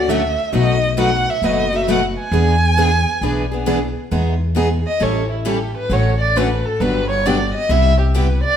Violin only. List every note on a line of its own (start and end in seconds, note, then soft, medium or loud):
0.00 0.11 D5 medium
0.09 0.54 E5 medium
0.56 0.96 D#5 loud
1.01 1.32 F#5 medium
1.30 1.46 E5 medium
1.45 1.77 D#5 medium
1.76 1.89 E5 medium
1.92 2.04 F#5 medium
2.19 3.64 G#5 medium
4.87 5.04 D#5 medium
5.03 5.30 C#5 medium
5.31 5.49 E4 soft
5.48 5.76 G4 medium
5.77 5.94 B4 medium
5.93 6.20 C#5 medium
6.21 6.39 D5 loud
6.37 6.67 B4 medium
6.65 6.83 A4 medium
6.81 7.10 B4 medium
7.10 7.28 C#5 medium
7.26 7.54 D5 medium
7.55 7.72 D#5 medium
7.71 7.99 E5 medium
8.01 8.17 G4 soft
8.15 8.43 B4 medium
8.44 8.57 D5 loud